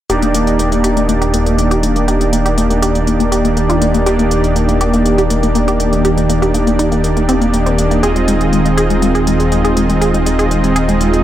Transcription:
0.10 detuned saw bass D#1, analog synth pad D#3 A#3 G4 D5, supersaw synth A#3 D4 D#4 G4 D5, synth pluck G4, closed hi-hat
0.22 synth pluck A#3, closed hi-hat
0.34 synth pluck A#3, closed hi-hat
0.47 closed hi-hat
0.59 synth pluck A#3, closed hi-hat
0.72 synth pluck A#3, closed hi-hat
0.84 synth pluck G4, closed hi-hat
0.97 synth pluck A#3, closed hi-hat
1.09 synth pluck A#3, closed hi-hat
1.22 synth pluck G4, closed hi-hat
1.34 synth pluck A#3, closed hi-hat
1.46 synth pluck A#3, closed hi-hat
1.58 synth pluck A#3, closed hi-hat
1.71 synth pluck G4, closed hi-hat
1.83 synth pluck A#3, closed hi-hat
1.96 synth pluck A#3, closed hi-hat
2.08 synth pluck G4, closed hi-hat
2.21 synth pluck A#3, closed hi-hat
2.33 synth pluck A#3, closed hi-hat
2.46 synth pluck G4, closed hi-hat
2.58 synth pluck A#3, closed hi-hat
2.70 synth pluck A#3, closed hi-hat
2.82 synth pluck G4, closed hi-hat
2.95 synth pluck A#3, closed hi-hat
3.07 synth pluck A#3, closed hi-hat
3.20 synth pluck A#3, closed hi-hat
3.32 synth pluck G4, closed hi-hat
3.45 synth pluck A#3, closed hi-hat
3.57 synth pluck A#3, closed hi-hat
3.69 synth pluck F4, closed hi-hat
3.82 synth pluck A#3, closed hi-hat
3.94 synth pluck A#3, closed hi-hat
4.06 supersaw synth A#3 D4 D#4 G4 D5, synth pluck G4, closed hi-hat
4.19 synth pluck A#3, closed hi-hat
4.31 synth pluck A#3, closed hi-hat
4.44 closed hi-hat
4.56 synth pluck A#3, closed hi-hat
4.69 synth pluck A#3, closed hi-hat
4.81 synth pluck G4, closed hi-hat
4.93 synth pluck A#3, closed hi-hat
5.06 synth pluck A#3, closed hi-hat
5.18 synth pluck G4, closed hi-hat
5.30 synth pluck A#3, closed hi-hat
5.43 synth pluck A#3, closed hi-hat
5.55 synth pluck A#3, closed hi-hat
5.68 synth pluck G4, closed hi-hat
5.80 synth pluck A#3, closed hi-hat
5.93 synth pluck A#3, closed hi-hat
6.05 synth pluck G4, closed hi-hat
6.18 synth pluck A#3, closed hi-hat
6.30 synth pluck A#3, closed hi-hat
6.42 synth pluck G4, closed hi-hat
6.54 synth pluck A#3, closed hi-hat
6.67 synth pluck A#3, closed hi-hat
6.79 synth pluck D#4, closed hi-hat
6.92 synth pluck A#3, closed hi-hat
7.04 synth pluck A#3, closed hi-hat
7.17 synth pluck A#3, closed hi-hat
7.29 synth pluck C4, closed hi-hat
7.41 synth pluck A#3, closed hi-hat
7.53 synth pluck A#3, closed hi-hat
7.66 synth pluck C4, closed hi-hat
7.78 synth pluck A#3, closed hi-hat
7.91 synth pluck A#3, closed hi-hat
8.03 detuned saw bass D#1, analog synth pad G#3 C4 F4, supersaw synth C4 D#4 F4 G#4 D#5, synth pluck G#4, closed hi-hat
8.16 synth pluck G#3, closed hi-hat
8.28 synth pluck G#3, closed hi-hat
8.41 closed hi-hat
8.53 synth pluck G#3, closed hi-hat
8.65 synth pluck G#3, closed hi-hat
8.77 synth pluck G#4, closed hi-hat
8.90 synth pluck G#3, closed hi-hat
9.02 synth pluck G#3, closed hi-hat
9.15 synth pluck G#4, closed hi-hat
9.27 synth pluck G#3, closed hi-hat
9.40 synth pluck G#3, closed hi-hat
9.52 synth pluck G#3, closed hi-hat
9.65 synth pluck G#4, closed hi-hat
9.77 synth pluck G#3, closed hi-hat
9.89 synth pluck G#3, closed hi-hat
10.01 synth pluck G#4, closed hi-hat
10.14 synth pluck G#3, closed hi-hat
10.26 synth pluck G#3, closed hi-hat
10.39 synth pluck G#4, closed hi-hat
10.51 synth pluck G#3, closed hi-hat
10.64 synth pluck G#3, closed hi-hat
10.76 synth pluck G#4, closed hi-hat
10.89 synth pluck G#3, closed hi-hat
11.01 synth pluck G#3, closed hi-hat
11.13 synth pluck G#3, closed hi-hat

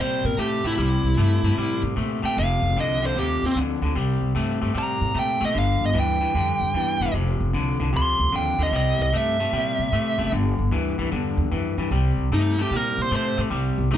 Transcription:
Already playing: upright bass A#2
0.00 clean electric guitar C3 G3, lead electric guitar C5
0.24 upright bass A#2, lead electric guitar A#4
0.38 upright bass A2, clean electric guitar C3 A3, lead electric guitar G4
0.64 upright bass A2, clean electric guitar C3 A3, lead electric guitar E4
0.77 upright bass C2, clean electric guitar C3 G3
1.04 upright bass C2
1.17 upright bass G2, clean electric guitar C3 A3
1.43 upright bass G2, clean electric guitar C3 A3
1.56 upright bass A2, clean electric guitar C3 G3
1.83 upright bass A2
1.96 upright bass A#2, clean electric guitar C3 A3
2.23 upright bass A#2, clean electric guitar C3 A3, lead electric guitar G5
2.37 upright bass F1, clean electric guitar F2 C3, lead electric guitar F5
2.62 upright bass F1
2.76 upright bass C2, clean electric guitar F2 D3
2.80 lead electric guitar D#5
3.02 clean electric guitar F2 D3
3.06 lead electric guitar C5
3.16 upright bass D#2, clean electric guitar F2 C3, lead electric guitar G4
3.42 upright bass D#2, lead electric guitar C4
3.55 upright bass D2, clean electric guitar F2 D3
3.81 upright bass D2, clean electric guitar F2 D3
3.95 upright bass C2, clean electric guitar C3 G3
4.21 upright bass C2
4.35 upright bass G2, clean electric guitar C3 A3
4.61 upright bass G2, clean electric guitar C3 A3
4.74 upright bass A2, clean electric guitar C3 G3
4.78 lead electric guitar A#5
5.01 upright bass A2
5.14 upright bass A#2, clean electric guitar C3 A3
5.19 lead electric guitar G5
5.40 upright bass A#2, clean electric guitar C3 A3
5.45 lead electric guitar D#5
5.54 upright bass G1, clean electric guitar G2 D3
5.59 lead electric guitar F5
5.81 upright bass G1
5.86 lead electric guitar D#5
5.94 upright bass D2, clean electric guitar G2 E3
6.00 lead electric guitar G5
6.21 clean electric guitar G2 E3
6.34 upright bass F2, clean electric guitar G2 D3
6.60 upright bass F2
6.74 upright bass E2, clean electric guitar G2 E3
7.00 upright bass E1, clean electric guitar G2 E3
7.13 upright bass F1, clean electric guitar F2 C3
7.40 upright bass F1
7.53 upright bass C2, clean electric guitar F2 D3
7.80 upright bass C2, clean electric guitar F2 D3
7.93 upright bass D2, clean electric guitar F2 C3, lead electric guitar C6
8.19 upright bass D2
8.32 upright bass D#2, clean electric guitar F2 D3, lead electric guitar G5
8.58 upright bass D#2, clean electric guitar F2 D3
8.63 lead electric guitar D#5
8.71 upright bass C2, clean electric guitar C3 G3
8.76 lead electric guitar D#5
8.99 upright bass C2, lead electric guitar D#5
9.13 upright bass G2, clean electric guitar C3 A3
9.17 lead electric guitar E5
9.40 clean electric guitar C3 A3
9.53 upright bass A#2, clean electric guitar C3 G3
9.79 upright bass A#2
9.92 upright bass A2, clean electric guitar C3 A3
10.18 upright bass F#1, clean electric guitar C3 A3
10.32 upright bass G1, clean electric guitar G2 D3
10.59 upright bass G1
10.71 upright bass D2, clean electric guitar G2 E3
10.98 upright bass D2, clean electric guitar G2 E3
11.12 upright bass E2, clean electric guitar G2 D3
11.37 upright bass E2
11.51 upright bass F2, clean electric guitar G2 E3
11.77 upright bass F2, clean electric guitar G2 E3
11.91 upright bass C2, clean electric guitar C3 G3
12.17 upright bass C2
12.31 upright bass G2, clean electric guitar C3 A3, lead electric guitar D#4
12.59 clean electric guitar C3 A3, lead electric guitar G4
12.71 upright bass A#2, clean electric guitar C3 G3
12.76 lead electric guitar A#4
12.98 upright bass A#2
13.02 lead electric guitar C5
13.11 upright bass A2, clean electric guitar C3 A3
13.16 lead electric guitar C5
13.37 upright bass A2, clean electric guitar C3 A3
13.50 upright bass C2, clean electric guitar C3 G3
13.78 upright bass C2
13.91 upright bass G2, clean electric guitar C3 A3, lead electric guitar D#4

